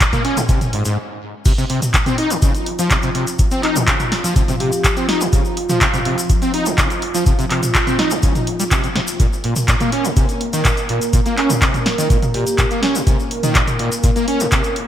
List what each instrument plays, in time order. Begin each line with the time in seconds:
Already playing: analog synth pad G#3 G#4
0.01 kick, clap, closed hi-hat, shaker
0.13 acid bass A#3, kick, closed hi-hat, mid tom, shaker
0.25 acid bass C#4, open hi-hat
0.37 acid bass A#2, closed hi-hat, mid tom, shaker
0.49 acid bass C3, kick, closed hi-hat, shaker
0.61 closed hi-hat, mid tom, shaker
0.73 acid bass G#2, open hi-hat
0.85 acid bass G#2, closed hi-hat, shaker
1.45 acid bass C3, analog synth pad F3 F4, kick, closed hi-hat, crash, shaker
1.58 acid bass C3, shaker
1.70 acid bass C3, open hi-hat
1.82 closed hi-hat, mid tom, shaker
1.94 kick, clap, closed hi-hat, shaker
2.06 acid bass C4, closed hi-hat, mid tom, shaker
2.18 acid bass D#4, open hi-hat
2.30 acid bass C3, closed hi-hat, shaker
2.42 acid bass C#3, kick, closed hi-hat, shaker
2.54 closed hi-hat, shaker
2.66 open hi-hat
2.79 acid bass F3, closed hi-hat, shaker
2.91 acid bass C3, kick, clap, closed hi-hat, shaker
3.03 acid bass C3, closed hi-hat, shaker
3.15 acid bass C3, open hi-hat
3.27 closed hi-hat, shaker
3.39 kick, closed hi-hat, shaker
3.51 acid bass C4, closed hi-hat, shaker
3.63 acid bass D#4, clap, open hi-hat
3.76 acid bass C3, closed hi-hat, mid tom, shaker
3.88 acid bass C#3, kick, clap, closed hi-hat, shaker
4.00 closed hi-hat, mid tom, shaker
4.12 snare, open hi-hat
4.24 acid bass F3, closed hi-hat, shaker
4.36 acid bass C3, kick, closed hi-hat, shaker
4.48 acid bass C3, closed hi-hat, mid tom, shaker
4.60 acid bass C3, vibraphone G4, open hi-hat
4.72 vibraphone G4, closed hi-hat, shaker
4.84 kick, clap, closed hi-hat, shaker
4.97 acid bass C4, closed hi-hat, shaker
5.09 acid bass D#4, snare, open hi-hat
5.21 acid bass C3, open hi-hat, shaker
5.33 acid bass C#3, kick, closed hi-hat, shaker
5.45 shaker
5.57 open hi-hat
5.69 acid bass F3, closed hi-hat, mid tom, shaker
5.81 acid bass C3, kick, clap, closed hi-hat, shaker
5.94 acid bass C3, closed hi-hat, mid tom, shaker
6.05 acid bass C3, open hi-hat
6.18 closed hi-hat, shaker
6.30 kick, closed hi-hat, shaker
6.42 acid bass C4, closed hi-hat, shaker
6.54 acid bass D#4, open hi-hat
6.66 acid bass C3, closed hi-hat, shaker
6.78 acid bass C#3, kick, clap, closed hi-hat, shaker
6.90 closed hi-hat, shaker
7.02 open hi-hat
7.14 acid bass F3, closed hi-hat, shaker
7.26 acid bass C3, kick, closed hi-hat, shaker
7.39 acid bass C3, closed hi-hat, shaker
7.51 acid bass C3, clap, open hi-hat
7.63 closed hi-hat, mid tom, shaker
7.75 kick, clap, closed hi-hat, shaker
7.87 acid bass C4, closed hi-hat, mid tom, shaker
7.99 acid bass D#4, snare, open hi-hat
8.11 acid bass C3, closed hi-hat, shaker
8.23 acid bass C#3, kick, closed hi-hat, shaker
8.35 closed hi-hat, mid tom, shaker
8.47 open hi-hat
8.60 acid bass G3, closed hi-hat, shaker
8.71 acid bass C3, kick, clap, closed hi-hat, shaker
8.84 acid bass C3, closed hi-hat, shaker
8.96 acid bass C3, snare, open hi-hat
9.07 open hi-hat, shaker
9.20 acid bass A#2, analog synth pad A#3 A#4, kick, closed hi-hat, shaker
9.33 shaker
9.44 acid bass A#2, open hi-hat
9.56 closed hi-hat, mid tom, shaker
9.68 acid bass A#2, kick, clap, closed hi-hat, shaker
9.80 acid bass A#3, closed hi-hat, mid tom, shaker
9.92 acid bass C#4, open hi-hat
10.05 acid bass A#2, closed hi-hat, shaker
10.17 acid bass C3, kick, closed hi-hat, shaker
10.29 closed hi-hat, shaker
10.41 open hi-hat
10.53 acid bass D#3, closed hi-hat, shaker
10.65 acid bass A#2, kick, clap, closed hi-hat, shaker
10.77 closed hi-hat, shaker
10.89 acid bass A#2, open hi-hat
11.01 closed hi-hat, shaker
11.13 acid bass A#2, kick, closed hi-hat, shaker
11.26 acid bass A#3, closed hi-hat, shaker
11.38 acid bass C#4, clap, open hi-hat
11.50 acid bass A#2, closed hi-hat, mid tom, shaker
11.62 acid bass C3, kick, clap, closed hi-hat, shaker
11.74 closed hi-hat, mid tom, shaker
11.86 snare, open hi-hat
11.98 acid bass D#3, closed hi-hat, shaker
12.10 acid bass A#2, kick, closed hi-hat, shaker
12.22 closed hi-hat, mid tom, shaker
12.34 acid bass A#2, vibraphone G4, open hi-hat
12.47 vibraphone G4, closed hi-hat, shaker
12.58 acid bass A#2, kick, clap, closed hi-hat, shaker
12.71 acid bass A#3, closed hi-hat, shaker
12.83 acid bass C#4, snare, open hi-hat
12.95 acid bass A#2, open hi-hat, shaker
13.07 acid bass C3, kick, closed hi-hat, shaker
13.20 shaker
13.31 open hi-hat
13.43 acid bass D#3, closed hi-hat, mid tom, shaker
13.55 acid bass A#2, kick, clap, closed hi-hat, shaker
13.67 closed hi-hat, mid tom, shaker
13.79 acid bass A#2, open hi-hat
13.92 closed hi-hat, shaker
14.03 acid bass A#2, kick, closed hi-hat, shaker
14.16 acid bass A#3, closed hi-hat, shaker
14.28 acid bass C#4, open hi-hat
14.40 acid bass A#2, closed hi-hat, shaker
14.52 acid bass C3, kick, clap, closed hi-hat, shaker
14.64 closed hi-hat, shaker
14.76 open hi-hat